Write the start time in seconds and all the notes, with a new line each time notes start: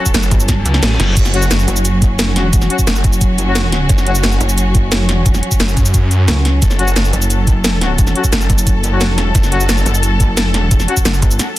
Already playing: F#3 C#4 A4
0.06 kick, cabasa
0.14 F#1, snare, closed hi-hat, cabasa
0.23 cabasa
0.31 G1, kick, closed hi-hat, cabasa
0.40 cabasa
0.48 kick, snare, closed hi-hat, reverse cymbal, cabasa
0.66 C#2, closed hi-hat, cabasa
0.74 snare
0.83 A1, snare, closed hi-hat, cabasa
1.00 F#1, snare, closed hi-hat
1.17 F#1 F#4, kick, closed hi-hat, crash, cabasa
1.25 snare, cabasa
1.34 F#3 C#4 F#4, closed hi-hat
1.42 cabasa
1.51 F#1, snare, closed hi-hat, cabasa
1.59 cabasa
1.68 F#1, closed hi-hat, cabasa
1.76 cabasa
1.85 closed hi-hat, cabasa
2.02 kick, closed hi-hat, cabasa
2.19 snare, closed hi-hat, cabasa
2.27 F1
2.36 F#3 C#4 F#4, snare, closed hi-hat
2.53 E1, kick, closed hi-hat, cabasa
2.62 snare, cabasa
2.70 F#3 C#4 F#4, closed hi-hat
2.79 kick, cabasa
2.87 F#1, snare, closed hi-hat, cabasa
2.96 cabasa
3.04 F#1, kick, closed hi-hat, cabasa
3.13 cabasa
3.21 kick, closed hi-hat, cabasa
3.38 closed hi-hat, cabasa
3.47 F#3 C#4 F#4
3.55 snare, closed hi-hat, cabasa
3.72 snare, closed hi-hat
3.89 F#1, kick, closed hi-hat, cabasa
3.98 snare, cabasa
4.06 F#3 C#4 F#4, closed hi-hat
4.15 cabasa
4.24 F#1, snare, closed hi-hat, cabasa
4.32 cabasa
4.41 F#1, closed hi-hat, cabasa
4.49 cabasa
4.58 closed hi-hat, cabasa
4.75 kick, closed hi-hat, cabasa
4.92 snare, closed hi-hat, cabasa
5.00 F1
5.09 snare, closed hi-hat
5.26 E1, kick, closed hi-hat, cabasa
5.34 snare, cabasa
5.43 closed hi-hat
5.51 kick, cabasa
5.60 F#1, snare, closed hi-hat, cabasa
5.68 cabasa
5.77 F#2, kick, closed hi-hat, cabasa
5.86 cabasa
5.94 kick, closed hi-hat, cabasa
6.11 closed hi-hat, cabasa
6.28 C#2, snare, closed hi-hat, cabasa
6.45 snare, closed hi-hat
6.62 F#1 A4, kick, closed hi-hat, cabasa
6.71 snare, cabasa
6.79 F#3 C#4 F#4, closed hi-hat
6.88 cabasa
6.96 F#1, snare, closed hi-hat, cabasa
7.05 cabasa
7.13 F#1, closed hi-hat, cabasa
7.22 cabasa
7.30 closed hi-hat, cabasa
7.47 kick, closed hi-hat, cabasa
7.64 snare, closed hi-hat, cabasa
7.81 F#3 C#4 F#4, snare, closed hi-hat
7.98 E1, kick, closed hi-hat, cabasa
8.07 snare, cabasa
8.16 F#3 C#4 F#4, closed hi-hat
8.24 kick, cabasa
8.33 F#1, snare, closed hi-hat, cabasa
8.41 cabasa
8.50 F#1, kick, closed hi-hat, cabasa
8.58 cabasa
8.67 kick, closed hi-hat, cabasa
8.84 closed hi-hat, cabasa
8.92 F#3 C#4 F#4
9.01 snare, closed hi-hat, cabasa
9.09 F1
9.18 snare, closed hi-hat
9.35 F#1, kick, closed hi-hat, cabasa
9.43 snare, cabasa
9.52 F#3 C#4 F#4, closed hi-hat
9.60 cabasa
9.69 F#1, snare, closed hi-hat, cabasa
9.78 cabasa
9.86 F#1, closed hi-hat, cabasa
9.95 cabasa
10.03 closed hi-hat, cabasa
10.20 kick, closed hi-hat, cabasa
10.37 snare, closed hi-hat, cabasa
10.45 F1
10.54 snare, closed hi-hat
10.71 E1, kick, closed hi-hat, cabasa
10.80 snare, cabasa
10.88 F#3 C#4 F#4, closed hi-hat
10.97 kick, cabasa
11.05 F#1, snare, closed hi-hat, cabasa
11.14 cabasa
11.22 G1, kick, closed hi-hat, cabasa
11.31 cabasa
11.39 snare, closed hi-hat, cabasa